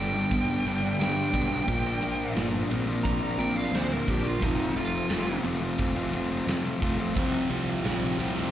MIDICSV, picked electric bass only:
0, 0, Header, 1, 2, 480
1, 0, Start_track
1, 0, Tempo, 684151
1, 1181, Time_signature, 4, 2, 24, 8
1, 5971, End_track
2, 0, Start_track
2, 0, Title_t, "Picked electric bass"
2, 0, Program_c, 0, 34
2, 0, Note_on_c, 0, 31, 85
2, 160, Note_off_c, 0, 31, 0
2, 224, Note_on_c, 0, 31, 84
2, 409, Note_off_c, 0, 31, 0
2, 456, Note_on_c, 0, 31, 84
2, 645, Note_off_c, 0, 31, 0
2, 689, Note_on_c, 0, 43, 78
2, 881, Note_off_c, 0, 43, 0
2, 939, Note_on_c, 0, 35, 79
2, 1126, Note_off_c, 0, 35, 0
2, 1181, Note_on_c, 0, 34, 77
2, 1368, Note_off_c, 0, 34, 0
2, 1408, Note_on_c, 0, 34, 85
2, 1600, Note_off_c, 0, 34, 0
2, 1648, Note_on_c, 0, 31, 79
2, 1840, Note_off_c, 0, 31, 0
2, 1889, Note_on_c, 0, 34, 79
2, 2081, Note_off_c, 0, 34, 0
2, 2136, Note_on_c, 0, 34, 80
2, 2326, Note_off_c, 0, 34, 0
2, 2364, Note_on_c, 0, 34, 85
2, 2559, Note_off_c, 0, 34, 0
2, 2610, Note_on_c, 0, 38, 79
2, 2802, Note_off_c, 0, 38, 0
2, 2863, Note_on_c, 0, 34, 70
2, 3050, Note_off_c, 0, 34, 0
2, 3107, Note_on_c, 0, 29, 86
2, 3292, Note_off_c, 0, 29, 0
2, 3333, Note_on_c, 0, 29, 86
2, 3524, Note_off_c, 0, 29, 0
2, 3581, Note_on_c, 0, 29, 85
2, 3769, Note_off_c, 0, 29, 0
2, 3815, Note_on_c, 0, 29, 82
2, 4005, Note_off_c, 0, 29, 0
2, 4067, Note_on_c, 0, 29, 83
2, 4253, Note_off_c, 0, 29, 0
2, 4299, Note_on_c, 0, 29, 86
2, 4488, Note_off_c, 0, 29, 0
2, 4533, Note_on_c, 0, 41, 74
2, 4724, Note_off_c, 0, 41, 0
2, 4787, Note_on_c, 0, 29, 66
2, 4972, Note_off_c, 0, 29, 0
2, 5027, Note_on_c, 0, 36, 86
2, 5212, Note_off_c, 0, 36, 0
2, 5262, Note_on_c, 0, 36, 86
2, 5449, Note_off_c, 0, 36, 0
2, 5496, Note_on_c, 0, 34, 83
2, 5685, Note_off_c, 0, 34, 0
2, 5742, Note_on_c, 0, 36, 86
2, 5929, Note_off_c, 0, 36, 0
2, 5971, End_track
0, 0, End_of_file